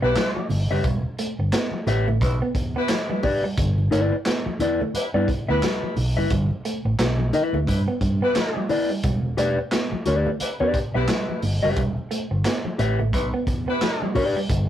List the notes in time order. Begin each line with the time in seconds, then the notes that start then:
0.02 B1 G3 B3 E4 G4 B4 E5
0.15 G3, snare, clap, closed hi-hat, muted conga, high conga
0.37 muted clean electric guitar stroke, high conga
0.49 G1, open hi-hat, low conga
0.70 F#1 G3 G4 B4 E5
0.84 E1 G3, kick, closed hi-hat, muted conga
1.19 A3, closed hi-hat
1.39 G1, muted clean electric guitar stroke
1.53 B3, snare, clap, closed hi-hat
1.71 muted clean electric guitar stroke, muted conga, high conga
1.87 A1 G4 B4 E5, closed hi-hat, low conga
2.08 A3, low conga
2.21 B1 G3 E4 B4, kick, closed hi-hat, muted conga
2.42 B3
2.55 E2, muted clean electric guitar stroke, kick, closed hi-hat
2.76 G3 B3 E4 B4
2.88 snare, clap, closed hi-hat, high conga
3.09 G3, muted conga, high conga
3.23 G4 B4 D5, muted clean electric guitar stroke, kick, open hi-hat, low conga
3.44 G3
3.58 G1 G3, kick, closed hi-hat
3.78 muted conga
3.91 G1 A3 E4 B4 D5, closed hi-hat
4.12 muted clean electric guitar stroke
4.26 B3, snare, clap, closed hi-hat, muted conga
4.46 muted fingered electric bass stroke, muted clean electric guitar stroke, muted conga, high conga
4.59 E2 E4 B4 D5, closed hi-hat, low conga
4.81 A3, low conga
4.94 G3 E4 B4, muted fingered electric bass stroke, closed hi-hat, muted conga
5.14 G2 B3 E4 B4 D5
5.28 muted clean electric guitar stroke, kick, closed hi-hat
5.48 D2 G3 B3 E4 B4 E5
5.62 G3, snare, clap, closed hi-hat, muted conga, high conga
5.83 muted clean electric guitar stroke, high conga
5.96 B1, open hi-hat, low conga
6.17 F#1 G3 E4 B4 E5
6.30 G1 G3, kick, closed hi-hat, muted conga
6.51 muted conga
6.65 A3, closed hi-hat
6.85 A1, muted clean electric guitar stroke
6.99 B1 B3, snare, clap, closed hi-hat, muted conga
7.18 muted clean electric guitar stroke, muted conga, high conga
7.33 E4 B4 E5, closed hi-hat, low conga
7.53 D2 A3, low conga
7.67 G2 G3 E4 B4, kick, closed hi-hat
7.87 B3, muted conga
8.01 G2, muted clean electric guitar stroke, kick, closed hi-hat
8.21 G3 B3 E4 B4
8.35 snare, clap, closed hi-hat, muted conga, high conga
8.56 G3, high conga
8.69 E4 B4 D5, muted clean electric guitar stroke, open hi-hat, low conga
8.90 G3
9.04 E1 G3, kick, closed hi-hat, muted conga
9.37 E1 A3 G4 B4 D5, closed hi-hat
9.59 muted clean electric guitar stroke
9.72 B3, snare, clap, closed hi-hat, muted conga
9.91 muted fingered electric bass stroke, muted clean electric guitar stroke, high conga
10.06 D2 G4 B4 D5, closed hi-hat, low conga
10.27 A3, low conga
10.39 G3 E4 B4, muted fingered electric bass stroke, closed hi-hat, muted conga
10.60 E2 B3 G4 B4 D5, muted conga
10.74 muted clean electric guitar stroke, kick, closed hi-hat
10.94 B1 G3 B3 E4 G4 B4 E5
11.08 G3, snare, clap, closed hi-hat, high conga
11.29 muted clean electric guitar stroke, muted conga, high conga
11.42 G1, open hi-hat, low conga
11.63 F#1 G3 G4 B4 E5
11.76 E1 G3, kick, closed hi-hat, muted conga
11.97 muted conga
12.11 A3, closed hi-hat
12.31 G1, muted clean electric guitar stroke
12.45 B3, snare, clap, closed hi-hat
12.65 muted clean electric guitar stroke, muted conga, high conga
12.79 A1 G4 B4 E5, closed hi-hat, low conga
12.99 A3, low conga
13.12 B1 G3 E4 B4, kick, closed hi-hat
13.33 B3, muted conga
13.47 E2, muted clean electric guitar stroke, kick, closed hi-hat
13.68 G3 B3 E4 B4
13.81 snare, clap, closed hi-hat, muted conga, high conga
14.02 G3, high conga
14.15 G4 B4 D5, muted clean electric guitar stroke, kick, open hi-hat, low conga
14.36 G3
14.49 G1 G3, kick, closed hi-hat, muted conga